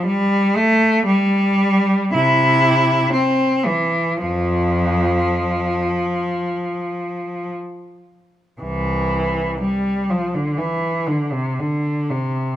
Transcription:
\new Staff \with { instrumentName = "Cello" } { \clef bass \time 4/4 \key f \major \tempo 4 = 58 << { g8 a8 g4 e'4 c'8 e8 | f2. r4 | \key c \major e4 g8 f16 d16 e8 d16 c16 d8 c8 | } \\ { r2 c4 r4 | f,4. r2 r8 | c,4 r2. | } >> }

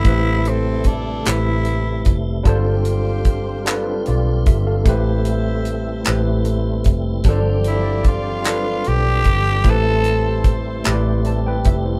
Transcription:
<<
  \new Staff \with { instrumentName = "Horn section" } { \time 6/8 \key a \minor \tempo 4. = 50 <c' e' a'>2~ <c' e' a'>8 r8 | <f' g' c''>2~ <f' g' c''>8 r8 | <a' c'' e''>2~ <a' c'' e''>8 r8 | <f g' d''>2~ <f g' d''>8 r8 |
<g' a' c''>2~ <g' a' c''>8 r8 | }
  \new Staff \with { instrumentName = "Tine electric piano" } { \time 6/8 \key a \minor << { r2. | r2 <f' d''>8 <g' e''>16 <a' f''>16~ | <a' f''>16 r2 r8. | r2. |
r2 <c'' a''>16 <b' g''>16 <g' e''>16 <e' c''>16 | } \\ { <a e' g' b' c''>4. <a e' g' b' c''>4. | <g d' f' a' c''>4. <g d' f' a' b'>4. | <a e' g' b' c''>4. <a e' g' b' c''>4. | <f g d' a' c''>4. <g d' f' a' b'>4. |
<a e' g' b' c''>4. <a e' g' b' d''>4. | } >> }
  \new Staff \with { instrumentName = "Tenor saxophone" } { \time 6/8 \key a \minor e'8 c'8 d'8 e'4 r8 | r2. | r2. | r8 e'8 f'4 g'4 |
a'4 r2 | }
  \new Staff \with { instrumentName = "Tonewheel organ" } { \time 6/8 \key a \minor << { <g a e'>2. | <d' f'>2. | <a e'>2. | <f d'>2. |
<g a e'>2. | } \\ { c2. | c'2.~ | c'2.~ | c'2.~ |
c'2. | } >> }
  \new Staff \with { instrumentName = "Fingered electric bass" } { \clef bass \time 6/8 \key a \minor a,,4. a,,4 f,,8 | g,,2 b,,8 g,,8 | a,,4. a,,4 f,,8 | g,,2 b,,8 g,,8 |
a,,4. a,,4 f,,8 | }
  \new DrumStaff \with { instrumentName = "Drums" } \drummode { \time 6/8 <hh bd>8 hh8 <hh bd>8 <hc hh>8 hh8 <hh bd>8 | <hh bd>8 hh8 <hh bd>8 <hc hh>8 hh8 <hh bd>8 | <hh bd>8 hh8 hh8 <hc hh>8 hh8 <hh bd>8 | <hh bd>8 hh8 <hh bd>8 <hc hh>8 hh8 <hh bd>8 |
<hh bd>8 hh8 <hh bd>8 <hc hh>8 hh8 <hh bd>8 | }
>>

